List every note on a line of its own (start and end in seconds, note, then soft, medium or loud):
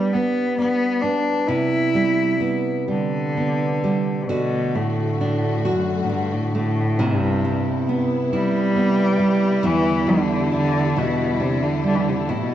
0.00 0.15 G3 medium
0.00 1.95 G3 medium
0.00 0.15 B3 medium
0.00 0.57 D4 soft
0.13 0.57 B3 medium
0.13 1.03 B3 medium
0.58 1.03 B3 medium
0.58 1.58 D4 soft
1.02 1.94 B3 medium
1.02 1.49 D4 medium
1.47 4.30 C3 medium
1.47 2.88 E4 medium
1.95 2.87 G3 soft
2.40 3.36 B3 soft
2.88 4.24 D3 medium
2.88 3.82 G3 soft
3.37 4.40 B3 soft
3.84 4.39 G3 soft
4.23 4.31 C3 soft
4.29 4.77 B2 medium
4.29 7.00 D3 medium
4.29 6.98 D3 medium
4.29 6.98 A3 medium
4.29 5.64 F#4 medium
4.29 6.98 F#4 medium
4.75 5.20 A2 medium
4.75 6.54 A3 soft
5.20 5.66 A2 medium
5.20 6.08 D4 medium
5.64 6.04 F#2 medium
5.64 6.99 F#4 medium
6.03 6.10 A2 medium
6.08 6.35 G2 medium
6.08 7.09 D4 soft
6.33 6.54 A2 medium
6.54 7.03 A2 medium
6.54 7.09 A3 soft
6.99 8.01 G2 medium
6.99 9.63 C3 medium
6.99 9.60 C3 medium
6.99 9.61 B3 medium
6.99 8.32 E4 medium
6.99 12.54 E4 medium
7.45 9.19 G3 medium
7.89 8.76 B3 soft
8.33 9.67 G3 loud
8.33 9.64 E4 medium
8.76 10.51 B3 soft
9.19 10.06 G3 medium
9.63 12.28 E2 medium
9.63 12.26 D3 medium
9.63 10.10 E3 loud
9.63 12.26 G3 medium
9.63 10.96 E4 medium
10.07 10.52 D3 medium
10.07 11.83 G3 medium
10.52 11.00 D3 medium
10.52 11.39 D4 soft
10.96 11.43 B2 medium
10.96 12.28 E4 medium
11.40 11.65 C3 medium
11.40 12.38 D4 soft
11.63 11.85 D3 medium
11.84 11.96 D3 medium
11.84 12.54 G3 soft
11.94 12.01 E3 soft
12.00 12.10 D3 medium
12.09 12.16 C3 soft
12.15 12.31 D3 medium
12.27 12.35 B2 medium
12.27 12.54 E3 medium
12.27 12.54 B3 medium
12.27 12.54 E4 medium
12.33 12.43 A2 medium
12.42 12.54 B2 medium